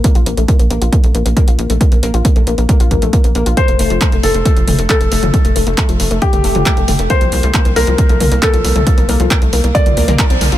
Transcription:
<<
  \new Staff \with { instrumentName = "Felt piano" } { \time 4/4 \key bes \major \tempo 4 = 136 r1 | r1 | c''4. a'4. a'4~ | a'4 r4 g'2 |
c''4. bes'4. a'4~ | a'4 r4 d''2 | }
  \new Staff \with { instrumentName = "Synth pluck" } { \time 4/4 \key bes \major bes16 f'16 bes16 a16 bes16 bes16 bes16 f'16 bes16 a16 bes16 bes16 bes16 f'16 bes16 a16 | bes16 bes16 bes16 f'16 bes16 a16 bes16 bes16 bes16 f'16 bes16 a16 bes16 bes16 bes16 f'16 | a16 a16 a16 f16 a16 a16 a16 a16 a16 f16 a16 a16 r16 a16 a16 f16 | a16 a16 a16 a16 a16 f16 a16 a16 r16 a16 a16 f16 a16 a16 a16 a16 |
bes16 f16 bes16 a16 bes16 bes16 bes16 f16 bes16 a16 bes16 bes16 r16 f16 bes16 a16 | bes16 bes16 bes16 f16 bes16 a16 bes16 bes16 r16 f16 bes16 bes16 bes'16 c'16 bes16 f'16 | }
  \new Staff \with { instrumentName = "Analog synth bass" } { \clef bass \time 4/4 \key bes \major r16 bes,,16 bes,,16 bes,,16 r16 bes,,16 bes,,16 bes,,16 r16 bes,,16 bes,,16 bes,,16 r16 bes,,16 bes,,16 bes,,16 | r16 bes,,16 bes,,16 bes,,16 r16 bes,,16 bes,,16 bes,,16 r16 bes,,16 bes,,16 bes,,16 r16 bes,,16 bes,,16 bes,,16 | r16 f,,16 f,,16 f,,16 r16 f,,16 f,,16 f,,16 r16 f,,16 f,,16 f,,16 r16 f,,16 f,,16 f,,16 | r16 f,,16 f,,16 f,,16 r16 f,,16 f,,16 f,,16 r16 f,,16 f,,16 f,,16 r16 f,,16 f,,16 f,,16 |
r16 c,16 c,16 c,16 r16 c,16 c,16 c,16 r16 c,16 c,16 c,16 r16 c,16 c,16 c,16 | r16 c,16 c,16 c,16 r16 c,16 c,16 c,16 r16 c,16 d,16 c,16 r16 c,16 c,16 bes,,16 | }
  \new DrumStaff \with { instrumentName = "Drums" } \drummode { \time 4/4 <hh bd>16 hh16 hh16 hh16 <hh bd>16 hh16 hh16 hh16 <hh bd>16 hh16 hh16 hh16 <hh bd>16 hh16 hh16 hh16 | <hh bd>16 hh16 hh16 hh16 <hh bd>16 hh16 hh16 hh16 <hh bd>16 hh16 <hh bd>16 hh16 <hh bd>16 hh16 hh16 hh16 | <hh bd>16 hh16 hho16 hh16 <hc hh bd>16 hh16 hho16 hh16 <hh bd>16 hh16 <hho toml>16 hh16 <hc hh bd>16 hh16 hho16 <hh toml>16 | <hh bd>16 hh16 hho16 hh16 <hc hh bd>16 hh16 hho16 hh16 <hh bd>16 <hh toml>16 hho16 <hh toml>16 <hc hh bd>16 hh16 <hho toml>16 hh16 |
<hh bd>16 hh16 hho16 hh16 <hc hh bd>16 hh16 hho16 hh16 <hh bd>16 hh16 <hho toml>16 hh16 <hc hh bd>16 hh16 hho16 <hh toml>16 | <hh bd>16 hh16 hho16 hh16 <hc hh bd>16 hh16 hho16 hh16 <hh bd>16 <hh toml>16 hho16 <hh toml>16 <hc hh bd>16 hh16 <hho toml>16 hh16 | }
>>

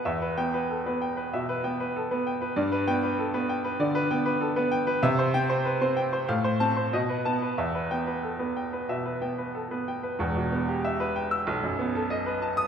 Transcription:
<<
  \new Staff \with { instrumentName = "Grand piano" } { \time 4/4 \key e \minor \tempo 4 = 95 << { r8 g''8 r2. | r8 g''8 r2. | r8 g''8 r4. a''8 r8 a''8 | r8 g''8 r2. |
r4. r16 e'''16 r4. r16 dis'''16 | } \\ { e''16 b'8 b'16 a'16 b'16 g''16 b'16 e''16 b'16 g''16 b'16 a'16 b'16 g''16 b'16 | d''16 b'8 b'16 a'16 b'16 g''16 b'16 d''16 b'16 g''16 b'16 a'16 b'16 g''16 b'16 | e''16 c''8 c''16 b'16 c''16 g''16 c''16 f''16 c''8 c''16 dis''16 b'8 b'16 | e''16 b'8 b'16 a'16 b'16 g''16 b'16 e''16 b'16 g''16 b'16 a'16 b'16 g''16 b'16 |
r1 | } >> }
  \new Staff \with { instrumentName = "Grand piano" } { \time 4/4 \key e \minor e,8 b8 r16 b8 r16 b,8 b8 r16 b8 r16 | g,8 b8 r16 b8 r16 d8 b8 r16 b8 r16 | c8 c'8 r16 c'8 r16 a,8 c'8 b,8 b8 | e,8 b8 r16 b8 r16 b,8 b8 r16 b8 r16 |
<e,, e,>16 b,16 b16 g'16 e''16 b'16 g''8 b,,16 fis,16 b16 a'16 dis''16 b'16 a''8 | }
>>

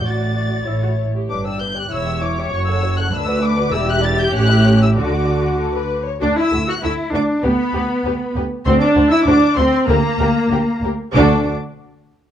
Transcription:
<<
  \new Staff \with { instrumentName = "Violin section" } { \time 2/4 \key d \major \tempo 4 = 97 a'''4. r8 | d'''16 e'''16 g'''16 fis'''16 e'''8 d'''8 | cis'''16 e'''8 fis'''16 e'''8 d'''8 | e'''16 fis'''16 a'''16 g'''16 fis'''8. e'''16 |
d'''4. r8 | d'''16 e'''8 fis'''16 e'''8 d'''8 | b''4. r8 | c'''16 d'''8 e'''16 d'''8 c'''8 |
bes''4. r8 | d'''8 r4. | }
  \new Staff \with { instrumentName = "Violin section" } { \time 2/4 \key d \major <fis' d''>4 <e' cis''>8. r16 | <d' b'>16 <g' d''>16 <d' b'>16 <g' d''>16 <e' cis''>16 <g' e''>16 <e' cis''>16 <g' e''>16 | <fis' cis''>16 <a' fis''>16 <fis' cis''>16 <a' fis''>16 <d' b'>16 <fis' d''>16 <d' b'>16 <fis' d''>16 | <e' d''>16 <g' e''>16 <e' d''>16 <g' e''>16 <cis' cis''>16 <e' e''>16 <cis' cis''>16 <e' e''>16 |
<a' d''>16 <fis' fis''>16 <a' d''>16 <fis' fis''>16 a'16 b'8 cis''16 | <fis' a'>8 <fis' a'>8 <fis' a'>8 <fis' a'>8 | <g' b'>8 <g' b'>8 <g' b'>8 <g' b'>8 | <fis' c''>8 <fis' c''>8 <fis' c''>8 <fis' c''>8 |
<g' bes'>8 <g' bes'>8 <g' bes'>8 <g' bes'>8 | <fis' a'>8 r4. | }
  \new Staff \with { instrumentName = "Viola section" } { \time 2/4 \key d \major fis'4 e'16 fis'8 g'16 | r4 cis''4~ | cis''4 b'4 | g'2 |
fis'4. r8 | d'16 e'8 fis'16 e'8 d'8 | b4. r8 | c'16 d'8 e'16 d'8 c'8 |
bes4. r8 | d'8 r4. | }
  \new Staff \with { instrumentName = "Cello section" } { \time 2/4 \key d \major a,4 a,8 r8 | g,4 e,4 | fis,4 d,4 | e,4 a,4 |
d4. r8 | d'16 e'8 fis'16 e'8 d'8 | b4. r8 | c'16 d'8 e'16 d'8 c'8 |
bes4. r8 | d'8 r4. | }
  \new Staff \with { instrumentName = "Double bass section" } { \clef bass \time 2/4 \key d \major a,,4 a,,8 r8 | g,,4 e,,4 | fis,,4 d,4 | e,,4 a,,4 |
d,4. r8 | d,8 d,8 d,8 d,8 | d,8 d,8 d,8 d,8 | d,8 d,8 d,8 d,8 |
d,8 d,8 d,8 d,8 | d,8 r4. | }
>>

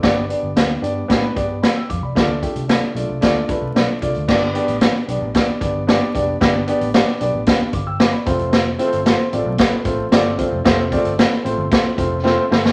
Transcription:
<<
  \new Staff \with { instrumentName = "Upright piano" } { \time 4/4 \key g \mixolydian \tempo 4 = 113 << { r2. <d'' b''>16 <g'' e'''>16 <f'' d'''>16 <d'' b''>16~ | <d'' b''>16 r2. r8. | r1 | r2 r8 <f'' d'''>16 <g'' e'''>16 <f'' d'''>16 <d'' b''>8 r16 |
r1 | r1 | } \\ { <b d' g' d''>8 <b d' g' d''>8 <b d' g' f''>8 <b d' g' d''>8 <b d' g' b'>8 <b d' g' d''>8 r4 | <a d' f' d''>8 <a d' f' g'>8 <a d' f' d''>8 <a d' f' d''>8 <a d' f' d''>8 <a d' f' b'>8 <a d' f' d''>8 <a d' f' d''>8 | <b d' g' d''>8 <b d' g' d''>8 <b d' g' d''>8 <b d' g' d''>8 <b d' g' d''>8 <b d' g' d''>8 <b d' g' d''>8 <b d' g' d''>8 | <b d' g' d''>8 <b d' g' d''>8 <b d' g' d''>8 <b d' g' d''>8 <b d' g' f''>8 r4 <a c' f' c''>8~ |
<a c' f' c''>8 <a c' f' c''>8 <a c' f' c''>8 <a c' f' d''>8 <a c' f' b'>8 <a c' f' c''>8 <a c' f' d''>8 <a c' f' c''>8 | <a c' f' c''>8 <a c' f' d''>8 <a c' f' b'>8 <a c' f' c''>8 <a c' f' c''>8 <a c' f' c''>8 <a c' f' c''>8 <a c' f' c''>8 | } >> }
  \new Staff \with { instrumentName = "Fingered electric bass" } { \clef bass \time 4/4 \key g \mixolydian g,,8. g,,16 d,8 g,8 a,8 g,8. r16 f,16 c,16 | d,8. c,8 r16 b,,16 c,16 d,8 r16 c,16 b,,16 r16 c,16 d,16 | g,,8. a,,8 r16 b,,16 a,,16 r8 g,,4 f,,8 | g,,8. a,,8 r16 b,,16 a,,16 r8 g,,4 f,,8~ |
f,,8. g,,8 r16 a,,16 b,,16 r8 a,,8 g,,8. f,,16 | r8. g,,8 r16 a,,16 g,,16 r8 f,,4 g,,8 | }
  \new DrumStaff \with { instrumentName = "Drums" } \drummode { \time 4/4 <hh bd sn>8 hh8 <hh sn>8 hh8 <hh bd sn>8 <hh bd>8 <hh sn>8 <hh bd>8 | <hh bd sn>8 <hh bd>16 hh16 <hh sn>8 hh8 <hh bd sn>8 <hh bd>8 <hh sn>8 <hh bd>16 hh16 | <cymc bd sn>8 hh16 hh16 <hh sn>8 hh8 <hh bd sn>8 <hh bd>8 <hh sn>8 <hh bd>8 | <hh bd sn>8 hh16 hh16 <hh sn>16 sn16 hh8 <hh bd sn>8 <hh bd>8 <hh sn>8 <hh bd>16 hh16 |
<hh sn>8 hh16 hh16 <hh sn>8 hh8 <hh bd sn>8 <hh bd>8 <hh sn>8 <hh bd>8 | <hh bd sn>8 <hh bd>16 hh16 <hh sn>16 sn16 hh8 <hh bd sn>8 <hh bd>8 sn8 sn16 sn16 | }
>>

